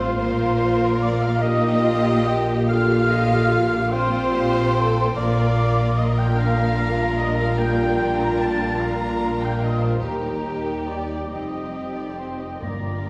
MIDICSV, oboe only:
0, 0, Header, 1, 2, 480
1, 0, Start_track
1, 0, Key_signature, -2, "minor"
1, 0, Tempo, 834492
1, 93, Time_signature, 6, 3, 24, 8
1, 2491, Tempo, 814111
1, 5851, Tempo, 867052
1, 7549, End_track
2, 0, Start_track
2, 0, Title_t, "Oboe"
2, 0, Program_c, 0, 68
2, 0, Note_on_c, 0, 77, 88
2, 816, Note_on_c, 0, 75, 75
2, 825, Note_off_c, 0, 77, 0
2, 1062, Note_on_c, 0, 77, 77
2, 1071, Note_off_c, 0, 75, 0
2, 1303, Note_on_c, 0, 79, 75
2, 1312, Note_off_c, 0, 77, 0
2, 1542, Note_off_c, 0, 79, 0
2, 1547, Note_on_c, 0, 77, 87
2, 1785, Note_on_c, 0, 75, 73
2, 1793, Note_off_c, 0, 77, 0
2, 2025, Note_on_c, 0, 77, 81
2, 2033, Note_off_c, 0, 75, 0
2, 2253, Note_on_c, 0, 79, 86
2, 2262, Note_off_c, 0, 77, 0
2, 2501, Note_on_c, 0, 77, 82
2, 2510, Note_off_c, 0, 79, 0
2, 2740, Note_on_c, 0, 79, 75
2, 2749, Note_off_c, 0, 77, 0
2, 2975, Note_off_c, 0, 79, 0
2, 2979, Note_on_c, 0, 77, 93
2, 3530, Note_off_c, 0, 77, 0
2, 3702, Note_on_c, 0, 82, 88
2, 4411, Note_on_c, 0, 79, 81
2, 4419, Note_off_c, 0, 82, 0
2, 5125, Note_off_c, 0, 79, 0
2, 5129, Note_on_c, 0, 77, 65
2, 5838, Note_off_c, 0, 77, 0
2, 5852, Note_on_c, 0, 79, 64
2, 6553, Note_off_c, 0, 79, 0
2, 6572, Note_on_c, 0, 79, 48
2, 7274, Note_off_c, 0, 79, 0
2, 7291, Note_on_c, 0, 82, 50
2, 7549, Note_off_c, 0, 82, 0
2, 7549, End_track
0, 0, End_of_file